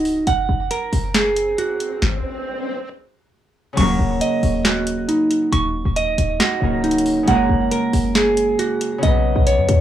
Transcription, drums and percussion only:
0.05 open hi-hat
0.27 closed hi-hat
0.71 closed hi-hat
0.93 open hi-hat
1.15 snare, clap, closed hi-hat
1.36 closed hi-hat
1.58 closed hi-hat
1.80 closed hi-hat
2.02 kick, snare
3.77 closed hi-hat, crash
4.21 closed hi-hat
4.43 open hi-hat
4.65 snare, clap, closed hi-hat
4.87 closed hi-hat
5.09 closed hi-hat
5.31 closed hi-hat
5.53 closed hi-hat
5.96 closed hi-hat
6.18 closed hi-hat
6.40 snare, clap, closed hi-hat
6.84 closed hi-hat
6.91 closed hi-hat
6.98 closed hi-hat
7.06 open hi-hat
7.28 closed hi-hat
7.71 closed hi-hat
7.93 open hi-hat
8.15 snare, clap, closed hi-hat
8.37 closed hi-hat
8.59 closed hi-hat
8.81 closed hi-hat
9.03 closed hi-hat
9.47 closed hi-hat
9.69 closed hi-hat

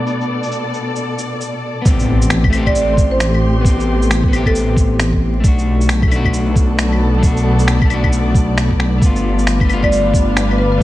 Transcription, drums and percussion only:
0.07 shaker
0.21 shaker
0.43 shaker
0.52 shaker
0.74 shaker
0.96 shaker
1.18 shaker
1.41 shaker
1.85 kick, shaker
1.99 shaker
2.22 shaker
2.30 finger snap, shaker
2.44 kick, claves
2.53 claves, shaker
2.66 kick, claves
2.75 shaker
2.97 kick, shaker
3.20 finger snap, shaker
3.34 claves
3.65 kick, shaker
3.80 shaker
4.02 shaker
4.11 finger snap, shaker
4.23 kick
4.33 claves, shaker
4.46 kick, claves
4.55 shaker
4.77 kick, shaker
5.00 finger snap, shaker
5.13 kick
5.44 kick, shaker
5.59 shaker
5.81 shaker
5.89 finger snap, shaker
6.02 kick, claves
6.12 claves, shaker
6.25 kick, claves
6.34 shaker
6.56 kick, shaker
6.79 finger snap, shaker
6.93 claves
7.23 kick, shaker
7.37 shaker
7.59 shaker
7.68 finger snap, shaker
7.81 kick, claves
7.90 claves, shaker
8.04 kick, claves
8.13 shaker
8.35 kick, shaker
8.58 finger snap, shaker
8.71 kick
8.80 finger snap
9.02 kick, shaker
9.16 shaker
9.39 shaker
9.47 finger snap, shaker
9.60 kick, claves
9.69 claves, shaker
9.83 kick, claves
9.92 shaker
10.14 kick, shaker
10.37 finger snap, shaker
10.51 claves

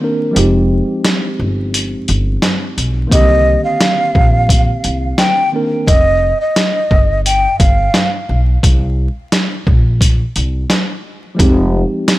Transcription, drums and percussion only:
0.36 closed hi-hat
1.05 snare, closed hi-hat
1.74 closed hi-hat
2.08 closed hi-hat
2.42 snare, closed hi-hat
2.78 closed hi-hat
3.12 kick, closed hi-hat
3.80 snare, closed hi-hat
4.15 kick
4.49 kick, closed hi-hat
4.84 closed hi-hat
5.18 snare, closed hi-hat
5.87 kick, closed hi-hat
6.56 snare, closed hi-hat
6.91 kick
7.26 closed hi-hat
7.60 kick, closed hi-hat
7.94 snare, closed hi-hat
8.63 kick, closed hi-hat
9.32 snare, closed hi-hat
9.67 kick
10.01 kick, closed hi-hat
10.36 closed hi-hat
10.70 snare, closed hi-hat
11.39 kick, closed hi-hat
12.08 snare, closed hi-hat

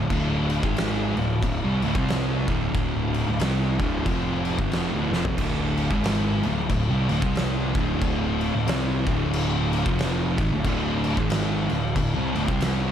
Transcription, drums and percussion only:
0.10 kick, crash
0.50 crash
0.63 kick
0.76 snare, crash
1.17 crash
1.43 kick, crash
1.82 crash
1.95 kick
2.08 snare, crash
2.48 kick, crash
2.75 kick, crash
3.14 crash
3.40 snare, crash
3.80 kick, crash
4.06 kick, crash
4.45 crash
4.59 kick
4.72 snare, crash
5.13 snare
5.25 floor tom
5.38 kick, crash
5.77 crash
5.91 kick
6.04 snare, crash
6.43 crash
6.70 kick, crash
7.09 crash
7.22 kick
7.35 snare, crash
7.75 kick, crash
8.02 kick, crash
8.41 crash
8.67 snare, crash
9.07 kick, crash
9.33 crash
9.73 crash
9.86 kick
9.99 snare, crash
10.38 kick, crash
10.65 kick, crash
11.04 crash
11.17 kick
11.30 snare, crash
11.69 crash
11.96 kick, crash
12.35 crash
12.48 kick
12.60 snare, crash

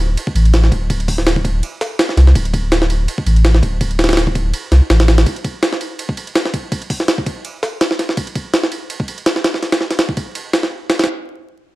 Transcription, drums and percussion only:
0.17 ride
0.27 kick
0.36 ride
0.45 ride
0.54 snare, ride
0.64 snare
0.72 kick, ride
0.90 kick, ride
1.00 ride
1.08 kick, open hi-hat
1.18 snare
1.27 snare, ride
1.36 kick
1.45 kick, ride
1.63 ride
1.81 snare, ride
1.99 snare, ride
2.09 snare
2.17 snare, ride
2.27 snare
2.35 kick, ride
2.45 ride
2.54 kick, ride
2.72 snare, ride
2.82 snare
2.90 ride
3.08 ride
3.18 kick
3.26 ride
3.36 ride
3.45 snare, ride
3.54 snare
3.63 kick, ride
3.81 kick, ride
3.91 ride
3.99 snare, ride
4.04 snare, ride
4.09 snare, ride
4.13 snare, ride
4.17 snare, ride
4.27 kick
4.35 kick, ride
4.54 ride
4.72 snare, ride
4.90 snare, ride
5.00 snare, ride
5.08 snare, ride
5.18 snare, ride
5.26 kick, ride
5.36 ride
5.44 kick, ride
5.63 snare, ride
5.73 snare
5.81 ride
5.99 ride
6.09 kick
6.17 ride
6.27 ride
6.35 snare, ride
6.45 snare
6.54 kick, ride
6.72 kick, ride
6.82 ride
6.90 kick, open hi-hat
7.00 snare
7.08 snare, ride
7.18 kick
7.26 kick, ride
7.45 ride
7.63 snare, ride
7.81 snare, ride
7.91 snare
7.99 snare, ride
8.09 snare
8.17 kick, ride
8.27 ride
8.35 kick, ride
8.54 snare, ride
8.63 snare
8.72 ride
8.90 ride
9.00 kick
9.08 ride
9.18 ride
9.26 snare, ride
9.36 snare
9.44 snare, ride
9.54 snare
9.63 snare, ride
9.72 snare, ride
9.81 snare
9.91 snare, ride
9.99 snare, ride
10.09 kick
10.17 kick, ride
10.35 ride
10.53 snare, ride
10.63 snare
10.90 snare, ride
10.99 snare, ride
11.04 snare, ride

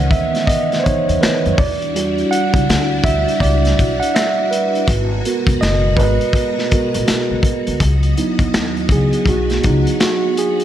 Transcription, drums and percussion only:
0.11 kick, closed hi-hat
0.35 snare, closed hi-hat
0.47 kick, closed hi-hat
0.72 snare, closed hi-hat
0.86 kick, closed hi-hat
1.09 closed hi-hat
1.23 finger snap, snare, closed hi-hat
1.46 closed hi-hat
1.58 kick, open hi-hat
1.82 closed hi-hat
1.96 closed hi-hat
2.18 closed hi-hat
2.33 closed hi-hat
2.54 kick, closed hi-hat
2.70 finger snap, snare, closed hi-hat
3.04 kick, closed hi-hat
3.28 closed hi-hat
3.40 kick, closed hi-hat
3.65 snare, closed hi-hat
3.79 kick, closed hi-hat
4.03 closed hi-hat
4.16 finger snap, snare, closed hi-hat
4.53 closed hi-hat
4.75 closed hi-hat
4.88 kick, closed hi-hat
5.25 closed hi-hat
5.47 kick, closed hi-hat
5.63 finger snap, snare, closed hi-hat
5.97 kick, closed hi-hat
6.21 closed hi-hat
6.33 kick, closed hi-hat
6.59 snare
6.71 kick, closed hi-hat
6.94 closed hi-hat
7.08 finger snap, snare, closed hi-hat
7.43 kick, closed hi-hat
7.67 closed hi-hat
7.80 kick, closed hi-hat
8.03 closed hi-hat
8.17 closed hi-hat
8.39 kick, closed hi-hat
8.54 finger snap, snare, closed hi-hat
8.77 closed hi-hat
8.89 kick, closed hi-hat
9.13 closed hi-hat
9.26 kick, closed hi-hat
9.50 snare, closed hi-hat
9.63 kick, closed hi-hat
9.87 closed hi-hat
10.00 finger snap, snare, closed hi-hat
10.37 closed hi-hat
10.60 closed hi-hat

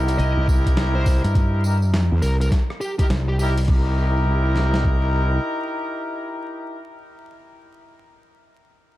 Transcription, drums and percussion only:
0.08 closed hi-hat, tambourine
0.18 closed hi-hat, tambourine
0.48 kick, tambourine
0.66 kick, closed hi-hat, tambourine
0.77 snare, closed hi-hat, tambourine
1.06 kick, open hi-hat, tambourine
1.24 closed hi-hat, tambourine
1.35 kick, closed hi-hat, tambourine
1.64 tambourine
1.82 tambourine
1.94 snare, closed hi-hat, tambourine
2.22 open hi-hat, tambourine
2.41 closed hi-hat, tambourine
2.52 kick, snare, closed hi-hat, tambourine
2.70 cross-stick
2.81 tambourine
2.99 kick, closed hi-hat, tambourine
3.10 snare, closed hi-hat, tambourine
3.39 open hi-hat, tambourine
3.45 open hi-hat
3.49 open hi-hat
3.57 closed hi-hat, open hi-hat, tambourine
3.65 kick, open hi-hat, crash
4.56 snare
4.74 snare
4.85 kick

